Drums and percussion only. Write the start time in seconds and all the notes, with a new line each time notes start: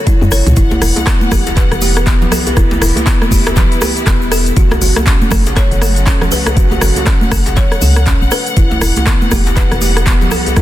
0.07 kick, closed hi-hat, high tom, shaker
0.21 high tom, shaker
0.31 cross-stick, open hi-hat, shaker
0.47 closed hi-hat, mid tom, shaker
0.56 kick, closed hi-hat, shaker
0.71 djembe slap, djembe tone, high conga, shaker
0.82 cross-stick, open hi-hat, shaker
0.96 closed hi-hat, djembe slap, high conga, djembe tone, shaker
1.07 kick, cross-stick, clap, closed hi-hat, shaker
1.21 high conga, shaker
1.31 kick, cross-stick, open hi-hat, high conga, low conga, shaker
1.47 closed hi-hat, djembe slap, shaker
1.57 kick, clap, closed hi-hat, shaker
1.72 cross-stick, closed hi-hat, shaker
1.81 open hi-hat, high conga, shaker
1.97 cross-stick, shaker
2.07 kick, clap, closed hi-hat, shaker
2.22 djembe slap, low conga, shaker
2.31 cross-stick, open hi-hat, djembe tone, low conga, shaker
2.46 closed hi-hat, djembe tone, shaker
2.56 kick, cross-stick, closed hi-hat, shaker
2.71 djembe slap, high conga, djembe tone, shaker
2.82 cross-stick, open hi-hat, shaker
2.96 closed hi-hat, djembe slap, djembe tone, high conga, shaker
3.07 kick, clap, closed hi-hat, shaker
3.22 cross-stick, high conga, shaker
3.31 kick, open hi-hat, high conga, shaker
3.46 cross-stick, closed hi-hat, djembe slap, shaker
3.56 kick, clap, closed hi-hat, low conga, shaker
3.72 closed hi-hat, shaker
3.81 cross-stick, open hi-hat, djembe tone, high conga, shaker
3.97 closed hi-hat, shaker
4.07 kick, cross-stick, clap, closed hi-hat, shaker
4.22 shaker
4.32 cross-stick, open hi-hat, shaker
4.46 closed hi-hat, shaker
4.56 kick, closed hi-hat, shaker
4.71 cross-stick, djembe slap, high conga, djembe tone, shaker
4.82 open hi-hat, shaker
4.96 cross-stick, closed hi-hat, djembe slap, high conga, djembe tone, shaker
5.07 kick, clap, closed hi-hat, shaker
5.22 high conga, shaker
5.31 kick, cross-stick, open hi-hat, high conga, low conga, shaker
5.46 closed hi-hat, djembe slap, shaker
5.56 kick, cross-stick, clap, closed hi-hat, shaker
5.71 closed hi-hat, shaker
5.82 cross-stick, open hi-hat, high conga, shaker
5.96 closed hi-hat, shaker
6.07 kick, clap, closed hi-hat, shaker
6.21 cross-stick, djembe slap, low conga, shaker
6.31 open hi-hat, djembe tone, low conga, shaker
6.46 cross-stick, closed hi-hat, djembe tone, shaker
6.57 kick, closed hi-hat, shaker
6.71 djembe slap, high conga, djembe tone, shaker
6.81 cross-stick, open hi-hat, shaker
6.96 closed hi-hat, djembe slap, djembe tone, high conga, shaker
7.06 kick, cross-stick, clap, closed hi-hat, shaker
7.21 high conga, shaker
7.32 kick, cross-stick, open hi-hat, high conga, shaker
7.46 closed hi-hat, djembe slap, shaker
7.56 kick, clap, closed hi-hat, low conga, shaker
7.72 cross-stick, closed hi-hat, shaker
7.81 open hi-hat, djembe tone, high conga, shaker
7.96 cross-stick, closed hi-hat, shaker
8.07 kick, clap, closed hi-hat, shaker
8.22 shaker
8.31 cross-stick, open hi-hat, shaker
8.46 closed hi-hat, shaker
8.57 kick, closed hi-hat, shaker
8.71 djembe slap, djembe tone, high conga, shaker
8.81 cross-stick, open hi-hat, shaker
8.96 closed hi-hat, djembe slap, high conga, djembe tone, shaker
9.07 kick, cross-stick, clap, closed hi-hat, shaker
9.21 high conga, shaker
9.31 kick, cross-stick, open hi-hat, high conga, low conga, shaker
9.47 closed hi-hat, djembe slap, shaker
9.57 kick, clap, closed hi-hat, shaker
9.71 cross-stick, closed hi-hat, shaker
9.81 open hi-hat, high conga, shaker
9.97 cross-stick, closed hi-hat, shaker
10.07 kick, clap, closed hi-hat, shaker
10.21 djembe slap, low conga, shaker
10.31 cross-stick, open hi-hat, djembe tone, low conga, shaker
10.46 closed hi-hat, djembe tone, shaker
10.56 kick, cross-stick, closed hi-hat, shaker